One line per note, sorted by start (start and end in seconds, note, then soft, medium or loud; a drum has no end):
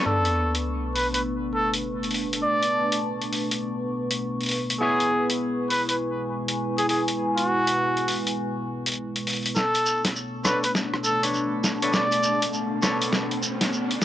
0.00 9.55 B3 medium
0.00 0.89 E4 medium
0.00 14.05 C#6 medium
0.05 9.53 B2 medium
0.05 4.77 A3 medium
0.05 4.79 D4 medium
0.05 4.77 D4 medium
0.05 4.79 A4 medium
0.05 0.54 A4 medium
0.05 9.53 B4 medium
0.05 4.79 D5 medium
0.05 sub drop medium
0.25 4.81 D4 medium
0.25 closed hi-hat soft
0.55 closed hi-hat medium
0.95 1.07 B4 medium
0.95 open hi-hat medium
1.14 1.21 B4 medium
1.14 closed hi-hat medium
1.55 1.73 A4 medium
1.61 4.81 A5 medium
1.74 closed hi-hat medium
2.03 closed hi-hat soft
2.11 closed hi-hat soft
2.11 open hi-hat medium
2.33 closed hi-hat medium
2.44 3.03 D5 medium
2.63 closed hi-hat soft
2.92 closed hi-hat medium
3.21 closed hi-hat soft
3.33 open hi-hat medium
3.51 closed hi-hat medium
4.11 closed hi-hat medium
4.41 closed hi-hat soft
4.43 closed hi-hat soft
4.46 closed hi-hat soft
4.49 closed hi-hat soft
4.49 open hi-hat medium
4.70 closed hi-hat medium
4.81 9.53 G#3 medium
4.81 9.54 B3 medium
4.81 9.54 E4 medium
4.81 9.53 E4 medium
4.81 5.29 G#4 medium
4.81 9.54 G#4 medium
4.81 9.54 B4 medium
4.81 9.54 C#5 medium
5.00 closed hi-hat soft
5.30 closed hi-hat medium
5.35 11.02 E4 medium
5.57 9.56 G#5 medium
5.70 5.82 B4 medium
5.70 open hi-hat medium
5.89 5.96 B4 medium
5.89 closed hi-hat medium
6.48 closed hi-hat medium
6.78 6.85 G#4 medium
6.78 closed hi-hat soft
6.89 7.01 G#4 medium
6.89 open hi-hat medium
7.08 closed hi-hat medium
7.37 8.19 F#4 loud
7.37 closed hi-hat soft
7.67 closed hi-hat medium
7.97 closed hi-hat soft
8.08 open hi-hat medium
8.27 closed hi-hat medium
8.86 closed hi-hat medium
8.86 closed hi-hat soft
8.88 closed hi-hat soft
8.92 closed hi-hat soft
8.94 closed hi-hat soft
8.95 closed hi-hat soft
9.16 closed hi-hat soft
9.27 open hi-hat medium
9.30 open hi-hat soft
9.33 open hi-hat soft
9.36 open hi-hat soft
9.43 closed hi-hat medium
9.43 open hi-hat soft
9.55 14.05 B2 medium
9.55 14.05 A3 medium
9.55 14.05 B3 medium
9.55 14.05 D4 medium
9.55 10.05 A4 medium
9.55 11.92 C#5 medium
9.55 snare soft
9.55 riser medium
9.55 shekere soft
9.75 closed hi-hat soft
9.75 shekere soft
9.86 shekere medium
10.05 snare soft
10.05 closed hi-hat medium
10.05 shekere soft
10.09 14.05 D4 medium
10.16 shekere soft
10.44 10.64 D4 medium
10.44 10.64 A4 medium
10.44 10.64 B4 medium
10.44 10.58 B4 medium
10.44 10.64 C#5 medium
10.44 cross-stick soft
10.44 snare soft
10.44 shekere medium
10.62 10.71 B4 medium
10.62 14.05 A5 medium
10.62 closed hi-hat medium
10.62 shekere soft
10.75 snare medium
10.75 shekere medium
10.94 cross-stick soft
11.04 11.23 A4 medium
11.04 shekere medium
11.23 11.79 D4 medium
11.23 11.78 A4 medium
11.23 11.78 B4 medium
11.23 11.78 C#5 medium
11.23 closed hi-hat medium
11.23 shekere soft
11.34 shekere soft
11.64 snare medium
11.64 shekere medium
11.82 12.05 D4 medium
11.82 12.05 A4 medium
11.82 12.05 B4 medium
11.82 12.05 C#5 medium
11.82 closed hi-hat medium
11.82 shekere soft
11.93 12.53 D5 medium
11.93 snare medium
11.93 shekere medium
12.11 closed hi-hat medium
12.11 shekere soft
12.23 shekere medium
12.42 closed hi-hat medium
12.42 shekere soft
12.53 shekere medium
12.82 14.05 D4 medium
12.82 14.05 A4 medium
12.82 14.05 B4 medium
12.82 14.05 C#5 medium
12.82 cross-stick soft
12.82 snare medium
12.82 shekere medium
13.02 closed hi-hat medium
13.02 shekere soft
13.13 snare medium
13.13 shekere medium
13.31 closed hi-hat soft
13.43 shekere loud
13.61 snare medium
13.61 closed hi-hat medium
13.61 shekere soft
13.73 shekere soft
13.91 closed hi-hat medium